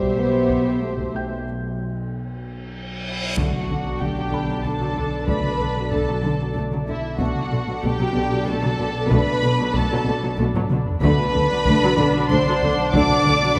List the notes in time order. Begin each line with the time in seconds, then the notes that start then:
Already playing: B1 G3 G4 C5 E5 C6
0.01 taiko
0.18 B2 B3
0.50 B2, taiko
0.82 A3 B3
0.98 taiko
1.14 B2 G5 G6
1.46 reverse cymbal
3.05 E4 E5
3.36 B1 D2 D3 A3 D4 F#4 A4 D5 F#5 A5, taiko, impact
3.53 taiko mid
3.69 D2 D3
3.85 D3 F#3
4.00 D2 D3 A3 G4 G5, taiko
4.17 D3 F#3
4.32 D2 D3 B5
4.48 D3 F#3
4.64 D2 D3 A3 A4 A5
4.80 D3 F#3, taiko mid
4.96 D2 D3
5.27 D2 D3 A3 D4 B4 D5 B5, taiko
5.44 taiko mid
5.61 D2 D3
5.76 D3 F#3
5.91 D2 D3 A3 A4 A5, taiko
6.08 D3 F#3
6.23 D2 D3
6.40 D3 F#3
6.56 D2 D3 A3
6.71 D3 F#3, taiko mid
6.87 D2 D3 E4 E5
7.18 B1 B2 A3 D4 F#4 A4 D5 F#5 B5, taiko
7.36 taiko mid
7.52 B1 B2 D3
7.67 B2 F#3
7.83 B1 B2 A3 G4 G5, taiko
8.00 B2 F#3
8.14 B1 B2 D3
8.32 B2 F#3
8.46 B1 B2 A3 A4 A5
8.63 B2 F#3, taiko mid
8.78 B1 B2 D3 B4
9.09 B1 B2 A3 D4 B4 B5, taiko
9.26 taiko mid
9.43 B1 B2 D3
9.59 B2 F#3
9.74 B1 B2 A3 A4 A5, taiko
9.92 B2 F#3
10.06 B1 B2 D3
10.23 B2 F#3
10.38 B1 B2 A3
10.54 B2 F#3, taiko low-mid
10.70 B1 B2 D3, taiko mid
10.86 taiko low
11.01 B1 D2 D3 A3 D4 F#4 A4 B4 D5 F#5 B5, taiko
11.18 taiko mid
11.34 D2 D3
11.51 D3 F#3
11.65 D2 D3 A3, taiko
11.83 D3 F#3
11.98 D2 D3
12.14 D3 F#3
12.29 D2 D3 A3 C5 C6
12.46 D3 F#3, taiko mid
12.62 D2 D3
12.93 D2 D3 A3 D4 F#4 D5 D6, taiko
13.09 taiko mid
13.25 D2 D3
13.42 D3 F#3